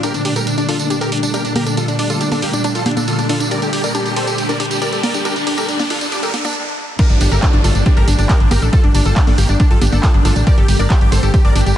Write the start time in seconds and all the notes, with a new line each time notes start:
0.03 A#2 D3 G3 A3 D4 G4 A#4, closed hi-hat, tambourine, riser
0.14 D4, closed hi-hat, tambourine
0.25 D4 G4, open hi-hat
0.36 G4 A4 A#4, closed hi-hat, tambourine
0.47 D4, closed hi-hat, tambourine
0.58 D4, closed hi-hat, tambourine
0.69 D4 F4 A4, open hi-hat
0.79 D4, closed hi-hat, tambourine
0.90 D4 G4, closed hi-hat, tambourine
1.01 G4 A4 A#4, closed hi-hat, tambourine
1.12 D4, open hi-hat
1.17 closed hi-hat
1.23 D4, closed hi-hat, tambourine
1.34 D4 G4 A#4, closed hi-hat, tambourine
1.45 D4, closed hi-hat, tambourine
1.56 G4 A#4, open hi-hat, high conga
1.66 D4 A4, closed hi-hat, tambourine
1.77 F4 A4, closed hi-hat, tambourine
1.88 D4, closed hi-hat, tambourine
1.99 D4, open hi-hat
2.10 F4 A4, closed hi-hat, tambourine
2.21 D4 G4, closed hi-hat, tambourine
2.32 D4 A4, open hi-hat, tambourine, high conga
2.42 A#3 G4, open hi-hat
2.53 D4, closed hi-hat, tambourine
2.64 D4, closed hi-hat, tambourine
2.75 F4 A4, closed hi-hat, tambourine
2.86 D4 G4, open hi-hat, high conga
2.91 closed hi-hat
2.97 D4 A4, closed hi-hat, tambourine, high conga
3.08 F4 A4, closed hi-hat, tambourine
3.18 D4, closed hi-hat, tambourine
3.29 D4 F4 A4, open hi-hat
3.40 D4, closed hi-hat, tambourine
3.51 G4 A#4 D5, closed hi-hat, tambourine
3.62 G4 A4, closed hi-hat, tambourine
3.73 G4, open hi-hat
3.84 D4 A#4 D5, closed hi-hat, tambourine
3.95 D4 G4, closed hi-hat, tambourine
4.05 G4, closed hi-hat, tambourine
4.16 G4 A4 C5, open hi-hat
4.27 G4 A4, closed hi-hat, tambourine
4.38 G4, closed hi-hat, tambourine
4.49 D4 A#4 D5, closed hi-hat, tambourine
4.60 D4 G4, open hi-hat
4.65 closed hi-hat
4.71 G4, closed hi-hat, tambourine
4.82 G4 A#4 D5, closed hi-hat, tambourine
4.92 G4 A4, closed hi-hat, tambourine
5.03 A#4 D5, open hi-hat, high conga
5.14 D4 G4, closed hi-hat, tambourine
5.25 D4 G4 A#4, closed hi-hat, tambourine
5.36 D4, closed hi-hat, tambourine
5.47 D4 G4, open hi-hat
5.58 G4 A4 A#4, tambourine
5.68 D4, closed hi-hat, tambourine
5.79 D4, open hi-hat, tambourine, high conga
5.90 D4 F4 A4, open hi-hat
6.01 D4, closed hi-hat, tambourine
6.12 D4 G4, closed hi-hat, tambourine
6.23 G4 A4 A#4, closed hi-hat, tambourine
6.34 D4, open hi-hat, high conga
6.39 closed hi-hat
6.45 D4, closed hi-hat, tambourine, high conga
6.99 D3 G3 A3 A#3 D4 G4 A#4, kick, closed hi-hat, crash, tambourine, downlifter
7.10 G1 D4, closed hi-hat
7.21 G1 D4 G4, open hi-hat, tambourine
7.32 G1 G4 A4 A#4, closed hi-hat, tambourine
7.42 D4, kick, clap, closed hi-hat
7.53 G1 D4, closed hi-hat
7.64 G1 D4 F4 A4, open hi-hat, tambourine
7.75 G1 D4, closed hi-hat, tambourine
7.86 D4 G4, kick, closed hi-hat, tambourine
7.97 G1 G4 A4 A#4, closed hi-hat
8.08 G1 D4, open hi-hat, tambourine
8.13 closed hi-hat
8.18 G1 D4, closed hi-hat, tambourine
8.29 D4 G4 A#4, kick, clap, closed hi-hat, tambourine
8.40 G1 D4, closed hi-hat
8.51 G1 G4 A#4, open hi-hat, tambourine, high conga
8.62 A1 D4 A4, closed hi-hat, tambourine
8.73 F4 A4, kick, closed hi-hat, tambourine
8.84 G1 D4, closed hi-hat
8.95 G1 D4, open hi-hat, tambourine
9.05 G1 F4 A4, closed hi-hat, tambourine
9.16 D4 G4, kick, clap, closed hi-hat, tambourine
9.27 G1 D4 A4, open hi-hat, high conga
9.38 G1 A#3 G4, open hi-hat, tambourine
9.49 G1 D4, closed hi-hat, tambourine
9.60 D4, kick, closed hi-hat, tambourine
9.71 G1 F4 A4, closed hi-hat
9.81 G1 D4 G4, open hi-hat, tambourine, high conga
9.87 closed hi-hat
9.92 G1 D4 A4, closed hi-hat, tambourine, high conga
10.03 F4 A4, kick, clap, closed hi-hat
10.14 G1 D4, closed hi-hat
10.25 G1 D4 F4 A4, open hi-hat, tambourine
10.36 A1 D4, closed hi-hat, tambourine
10.47 G4 A#4 D5, kick, closed hi-hat, tambourine
10.58 G1 G4 A4, closed hi-hat
10.68 G1 G4, open hi-hat, tambourine
10.79 G1 D4 A#4 D5, closed hi-hat, tambourine
10.90 D4 G4, kick, clap, closed hi-hat, tambourine
11.01 G1 G4, closed hi-hat
11.12 G1 G4 A4 C5, open hi-hat, tambourine
11.23 G1 G4 A4, closed hi-hat, tambourine
11.34 G4, kick, closed hi-hat, tambourine
11.45 G1 D4 A#4 D5, closed hi-hat
11.55 G1 D4 G4, open hi-hat, tambourine
11.61 closed hi-hat
11.66 G1 G4, closed hi-hat, tambourine